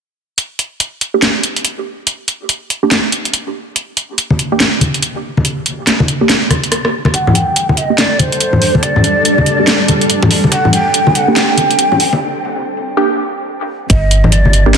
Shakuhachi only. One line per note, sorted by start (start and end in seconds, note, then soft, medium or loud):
7.14 7.37 F#5 loud
7.35 7.79 G5 loud
7.77 8.00 D#5 medium
7.98 8.21 D5 medium
8.19 8.84 C5 loud
8.83 10.10 D5 medium
10.52 10.72 F#5 loud
10.74 11.17 G5 loud
11.16 11.38 F#5 loud
11.37 12.21 G5 loud
13.90 14.34 D#5 medium
14.32 14.74 D5 medium